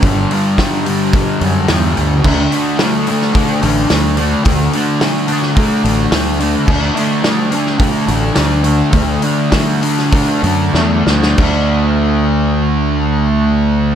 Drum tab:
CC |----------------|x---------------|----------------|x---------------|
HH |o-o-o-o-o-o-o-o-|--o-o-o-o-o-o-o-|o-o-o-o-o-o-o-o-|--o-o-o-o-o-o-o-|
SD |----o-------o---|----o--o----o---|----o--o----o---|----o--o----o---|
BD |o---o---o-------|o-------o-------|o-------o-------|o-------o-------|

CC |----------------|x---------------|
HH |o-o-o-o-o-o-----|----------------|
SD |----o--o----o-oo|----------------|
BD |o---o---o-------|o---------------|